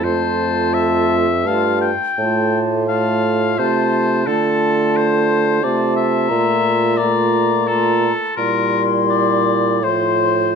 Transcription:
X:1
M:3/4
L:1/8
Q:1/4=86
K:F
V:1 name="Flute"
a4 a z | a2 a2 a2 | [K:Bblyd] a4 a2 | b2 b2 b z |
c'4 c'2 |]
V:2 name="Oboe"
c2 e2 f g- | g z f2 c2 | [K:Bblyd] A2 c2 d e- | e2 d2 A2 |
B z d2 c2 |]
V:3 name="Clarinet"
F4 F z | F2 F2 F2 | [K:Bblyd] F4 F2 | F2 F2 F z |
E4 F2 |]
V:4 name="French horn"
A,4 A, z | A,2 A,2 A,2 | [K:Bblyd] A,4 A,2 | A,2 A,2 A, z |
G,4 F,2 |]
V:5 name="Bassoon" clef=bass
F,,4 G,, z | A,,4 C,2 | [K:Bblyd] D,4 C,2 | B,,4- B,, z |
B,,4 A,,2 |]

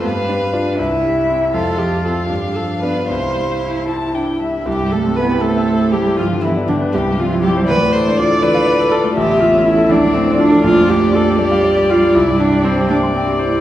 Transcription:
X:1
M:6/8
L:1/16
Q:3/8=80
K:C
V:1 name="Violin"
f6 e6 | f12- | f6 a2 g2 e2 | G2 A2 B2 A4 G2 |
F2 E2 D2 G2 F2 G2 | d12 | e6 d6 | [K:Gdor] d12- |
d6 d6 |]
V:2 name="Viola"
B6 z6 | A2 G2 A2 G2 A2 B2 | c6 E2 D2 E2 | G2 A2 B2 A4 G2 |
F2 E2 D2 G2 F2 G2 | B2 c2 d2 B4 A2 | G2 F2 E2 D2 C2 D2 | [K:Gdor] F2 G2 A2 G4 F2 |
E2 D2 C2 D2 C2 E2 |]
V:3 name="Grand piano"
G,,2 G,2 [DF]2 C,,2 G,2 [CE]2 | F,,2 F,2 [CF]2 G,,2 F,2 [B,D]2 | C,,2 G,2 E2 G2 E2 G,2 | C,, G,, G, C E G c e c G E G, |
G,, D, B, D G B C,, G,, C E G c | D,, A,, A, D F A d f d A F A, | A,,, E,, A, ^C E A D,, A,, A, D F A | [K:Gdor] B,,, F,, G, D F G d f d G F G, |
C,, G,, G, G c G g c' g G c G, |]
V:4 name="Cello" clef=bass
B,2 D2 D2 E6 | F6 D6 | E8- E z3 | G,2 A,2 B,2 A,4 G,2 |
F,2 E,2 D,2 G,2 F,2 G,2 | E,6 D,6 | E,6 F,6 | [K:Gdor] A,6 G,6 |
G,6 B,6 |]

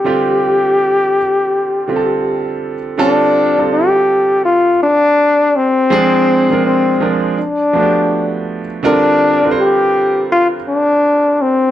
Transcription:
X:1
M:4/4
L:1/16
Q:"Swing 16ths" 1/4=82
K:Gm
V:1 name="Trombone"
G12- G2 z2 | D4 G4 F2 D4 C2- | C4 C2 z2 D6 z2 | D4 G4 F2 D4 C2 |]
V:2 name="Grand piano"
[D,G,CFG]6 z4 [D,G,CFGA]4- [D,G,CFGA] z | [D,G,CFA]2 z [D,G,CFA]6 z6 z | [F,_A,CD_A]2 z [F,A,CDB]2 z [F,A,CDB]2 z2 [F,=A,=B,D^FG]4- [=F,A,B,D^FG] z | [D,G,CFB]2 z [D,G,CF=Bc]6 z6 z |]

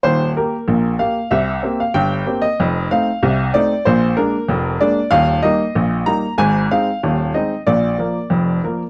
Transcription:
X:1
M:2/4
L:1/16
Q:1/4=94
K:Eb
V:1 name="Upright piano"
c2 B4 f2 | _f3 =f g3 e- | e2 f4 d2 | c2 B4 d2 |
f2 e4 b2 | a2 f4 e2 | d8 |]
V:2 name="Upright piano" clef=bass
[E,,,E,,]2 [B,G]2 [B,,,B,,]2 [B,G]2 | [C,,C,]2 [B,CG]2 [G,,,G,,]2 [B,CG]2 | [F,,,F,,]2 [=A,CE]2 [C,,C,]2 [A,CE]2 | [B,,,B,,]2 [A,B,D]2 [F,,,F,,]2 [A,B,D]2 |
[E,,,E,,]2 [G,B,E]2 [B,,,B,,]2 [G,B,E]2 | [A,,,A,,]2 [A,CE]2 [E,,,E,,]2 [A,CE]2 | [B,,,B,,]2 [F,B,B]2 [F,,,F,,]2 [F,B,B]2 |]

